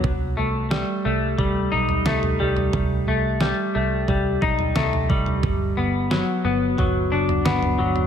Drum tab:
SD |----o-------o---|----o-------o---|----o-------o---|
FT |o-------o--o-o-o|o-------o--o-o-o|o-------o--o-o-o|
BD |o-------o-------|o-------o-o---o-|o-------o-------|